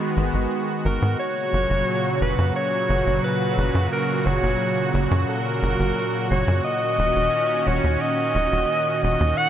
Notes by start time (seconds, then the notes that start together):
Already playing: D#3 G#3 B3 F#4
0.17 G#1
0.34 G#1
0.85 G#1 A#4
1.02 G#2
1.19 A#2 C#3 F#3 C#5
1.53 F#1
1.70 F#1
2.21 F#1 B4
2.38 F#2
2.56 C#5
2.89 F#1
3.07 F#1
3.24 B4
3.58 F#1
3.75 F#2
3.92 A#4
4.26 F#1 C#5
4.43 F#1
4.94 F#1
5.11 F#2
5.29 A#4
5.63 F#1
5.80 F#1
6.31 F#1 C#5
6.48 F#2
6.65 D#3 C#4 D#5
6.99 D#1
7.16 D#1
7.67 D#1 C#5
7.84 D#2
8.01 D#5
8.35 D#1
8.52 D#1
9.03 D#1 D#5
9.20 D#2
9.38 G#3 B3 F#5